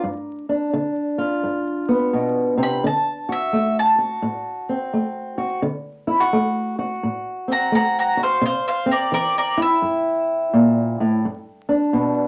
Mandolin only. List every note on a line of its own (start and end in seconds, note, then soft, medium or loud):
0.00 0.93 A#4 medium
0.00 0.94 D5 medium
2.63 2.84 B5 medium
2.87 3.30 A5 medium
3.32 3.76 E5 medium
3.79 5.14 A5 medium
7.52 7.72 F#5 medium
7.52 7.73 A#5 medium
7.75 7.96 F#5 medium
7.75 7.97 A#5 medium
7.99 8.19 F#5 medium
7.99 8.21 A#5 medium
8.23 8.43 C5 medium
8.23 8.44 F5 medium
8.46 8.66 C5 medium
8.46 8.67 F5 medium
8.68 8.89 C5 medium
8.68 8.90 F5 medium
8.91 9.12 A#4 medium
8.91 9.13 D5 medium
9.14 9.35 A#4 medium
9.14 9.36 D5 medium
9.38 9.59 A#4 medium
9.38 9.60 D5 medium
9.62 10.97 E5 loud